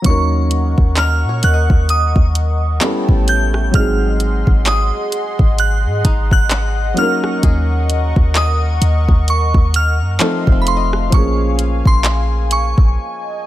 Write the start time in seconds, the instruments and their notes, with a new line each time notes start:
0.02 808-style bass D#2, grand piano F#3 A#3 C#4, analog synth pad A#4 D#5 F#5 C#6, kick, closed hi-hat
0.06 grand piano D#4 A#4, synth bell C#6
0.51 closed hi-hat
0.78 808-style bass D#2, kick
0.97 five-string banjo A#4, synth bell F6, clap, closed hi-hat
1.24 808-style bass A#2
1.29 five-string banjo C#5
1.43 808-style bass D#2, synth bell F#6, closed hi-hat
1.54 five-string banjo D#5
1.70 808-style bass D#2, kick
1.89 synth bell D#6, closed hi-hat
2.16 808-style bass D#2, kick
2.35 closed hi-hat
2.81 grand piano G3 B3 C#4 E4 A4, analog synth pad A3 C#5 G5 A5, clap, closed hi-hat
3.08 808-style bass A1, kick
3.28 synth bell G6, closed hi-hat
3.54 cross-stick
3.71 808-style bass G#1, grand piano F#3 G#3 C4, analog synth pad G#4 D#5 F#5 C6, synth bell F6, kick, closed hi-hat
3.77 grand piano D#4 G#4
4.20 closed hi-hat
4.47 808-style bass G#1, kick
4.66 five-string banjo G#4, synth bell D#6, clap, closed hi-hat
5.12 closed hi-hat
5.39 808-style bass G#1, kick
5.58 synth bell F#6, closed hi-hat
5.85 808-style bass G#2
6.05 808-style bass G#1, five-string banjo D#4, kick, closed hi-hat
6.31 synth bell F#6, kick
6.51 clap, closed hi-hat
6.94 grand piano F#3 A#3, analog synth pad A#4 C#6, closed hi-hat
6.98 grand piano C#4 D#4 A#4, synth bell F6
7.24 cross-stick
7.43 808-style bass D#2, five-string banjo G#4, kick, closed hi-hat
7.90 closed hi-hat
8.16 808-style bass D#2, kick
8.35 synth bell D#6, clap, closed hi-hat
8.82 808-style bass D#2, closed hi-hat
9.08 808-style bass D#2, kick
9.28 synth bell C#6, closed hi-hat
9.54 808-style bass D#2, kick
9.74 synth bell F6, closed hi-hat
10.01 808-style bass F#2
10.19 grand piano F3 A3 C4 D#4 A4, analog synth pad A3 F5 C6, five-string banjo A4, clap, closed hi-hat
10.47 808-style bass F1, kick
10.52 five-string banjo C4
10.62 synth bell B5
10.67 synth bell C6, closed hi-hat
10.77 five-string banjo D#5
10.93 cross-stick
11.10 808-style bass A#1, grand piano F3, analog synth pad G#5, kick, closed hi-hat
11.14 grand piano A#3 C#4 G#4, synth bell C#6
11.59 closed hi-hat
11.85 808-style bass A#1, synth bell C6, kick
12.04 clap, closed hi-hat
12.51 synth bell C#6, closed hi-hat
12.78 808-style bass A#1, kick
12.97 analog synth pad D#5